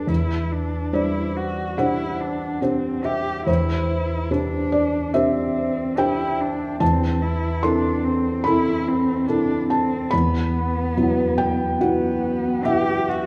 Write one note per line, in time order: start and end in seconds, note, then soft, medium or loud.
0.00 0.11 D4 soft
0.00 0.11 G4 soft
0.00 0.12 A4 soft
0.00 0.12 B4 soft
0.07 0.91 E2 soft
0.07 0.53 E4 soft
0.52 0.95 D4 soft
0.93 1.75 G3 soft
0.93 1.75 D4 soft
0.93 1.38 E4 soft
0.93 1.75 C5 soft
0.93 1.75 D5 medium
1.36 1.79 F#4 soft
1.78 2.59 D4 soft
1.78 2.22 E4 medium
1.78 2.59 G4 soft
1.78 2.60 C5 soft
1.78 3.01 F#5 medium
2.21 2.64 D4 medium
2.62 3.06 C4 medium
2.62 3.43 D4 soft
2.62 3.43 G4 soft
2.62 3.44 C5 soft
3.05 3.46 G4 medium
3.05 3.44 E5 soft
3.47 4.28 E2 soft
3.47 4.33 E4 medium
3.47 4.30 C5 medium
4.31 5.11 D4 soft
4.31 5.16 D4 medium
4.31 5.11 G4 soft
4.31 5.11 C5 soft
4.72 5.11 D5 medium
5.14 5.99 C4 medium
5.14 5.94 D4 soft
5.14 5.94 G4 soft
5.14 5.94 C5 soft
5.14 5.93 E5 medium
5.97 6.77 D4 soft
5.97 6.42 E4 medium
5.97 6.77 G4 soft
5.97 6.77 C5 soft
5.97 6.77 G5 medium
6.41 6.81 D4 medium
6.80 7.61 E2 medium
6.80 7.23 C4 medium
6.80 7.59 A5 medium
7.21 7.65 E4 medium
7.63 8.42 C4 soft
7.63 8.06 D4 medium
7.63 8.42 E4 soft
7.63 8.42 A4 soft
7.63 8.41 C6 medium
8.05 8.47 C4 medium
8.44 9.25 C4 soft
8.44 8.89 E4 medium
8.44 9.25 E4 soft
8.44 9.25 A4 soft
8.44 9.65 B5 medium
8.88 9.28 C4 medium
9.27 10.08 C4 soft
9.27 9.69 D4 medium
9.27 10.09 E4 soft
9.27 10.09 A4 soft
9.69 10.14 C4 medium
9.69 10.09 A5 medium
10.11 10.94 E2 soft
10.11 11.79 B3 medium
10.11 11.34 B5 medium
10.97 11.77 F#3 soft
10.97 11.77 B3 soft
10.97 11.77 E4 soft
11.38 11.77 G5 medium
11.80 12.66 B3 medium
11.80 12.62 B3 soft
11.80 12.62 E4 soft
11.80 12.62 F#4 soft
11.80 12.62 F#5 medium
12.65 13.26 B3 soft
12.65 13.26 E4 soft
12.65 13.10 G4 medium
12.65 13.06 E5 medium
12.65 13.26 F#5 soft
13.08 13.26 F#4 medium